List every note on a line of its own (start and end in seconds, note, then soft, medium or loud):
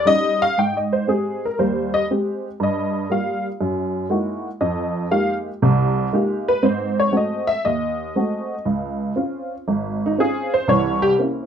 0.05 0.44 G3 medium
0.05 0.44 C#4 medium
0.05 0.44 D#4 medium
0.05 0.42 D#5 loud
0.42 0.58 F5 loud
0.58 1.03 G#2 medium
0.58 0.76 G5 medium
0.77 0.93 D#5 medium
0.93 1.09 C5 medium
1.07 1.45 G#3 medium
1.07 1.46 C4 soft
1.07 1.46 G4 medium
1.07 1.43 G#4 medium
1.45 1.61 A#4 medium
1.59 2.04 D#2 medium
1.59 2.04 G3 medium
1.59 1.94 C5 medium
1.94 2.04 D#5 loud
2.11 2.47 G#3 medium
2.11 2.47 C4 soft
2.11 2.47 G4 medium
2.60 3.04 G2 medium
2.60 3.09 D#5 medium
3.10 3.47 G3 medium
3.10 3.47 A#3 soft
3.10 3.47 F4 medium
3.10 3.45 F5 medium
3.61 4.05 F#2 medium
4.10 4.47 G#3 medium
4.10 4.47 A#3 soft
4.10 4.47 D#4 soft
4.10 4.47 E4 medium
4.10 4.47 F#4 medium
4.61 5.05 F2 medium
4.61 5.08 D#5 medium
5.11 5.48 G#3 medium
5.11 5.48 A#3 medium
5.11 5.48 D#4 medium
5.11 5.48 F4 medium
5.11 5.48 G4 medium
5.11 5.32 F5 medium
5.62 6.06 C2 medium
5.62 6.06 C3 medium
6.13 6.49 G#3 medium
6.13 6.49 A#3 medium
6.13 6.50 D#4 medium
6.13 6.50 F4 medium
6.13 6.50 G4 medium
6.48 6.63 B4 loud
6.63 7.07 G#2 medium
6.63 7.07 C4 medium
6.63 6.98 C5 medium
7.00 7.14 C#5 medium
7.12 7.50 G#3 medium
7.12 7.50 A3 medium
7.12 7.50 C4 medium
7.12 7.50 F#4 medium
7.17 7.49 D#5 medium
7.47 7.64 E5 loud
7.65 8.10 D#2 medium
7.65 8.64 D#5 medium
8.16 8.53 G#3 soft
8.16 8.53 A3 soft
8.16 8.53 C4 soft
8.16 8.54 F#4 medium
8.65 9.11 C#2 medium
9.16 9.54 C4 soft
9.16 9.54 C#4 medium
9.16 9.54 F4 medium
9.68 10.13 G#1 medium
10.06 10.20 D#4 medium
10.18 10.55 C4 medium
10.18 10.56 C#4 medium
10.18 10.56 F4 medium
10.18 10.54 G#4 medium
10.54 10.69 C5 loud
10.68 11.13 C2 medium
10.68 11.13 E3 medium
10.68 11.03 C#5 loud
11.02 11.12 G4 loud
11.18 11.46 A#3 medium
11.18 11.46 C4 soft
11.18 11.46 C#4 medium
11.18 11.46 E4 medium